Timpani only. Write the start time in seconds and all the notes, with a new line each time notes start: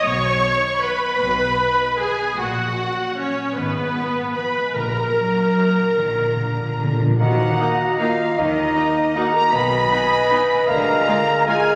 4.76 A#2
5.98 A#2
6.05 A#2
6.13 A#2
6.21 A#2
6.28 A#2
6.36 A#2
6.44 A#2
6.52 A#2
6.60 A#2
6.69 A#2
6.77 A#2
6.84 A#2
6.92 A#2
6.99 A#2
7.07 A#2
7.20 D#3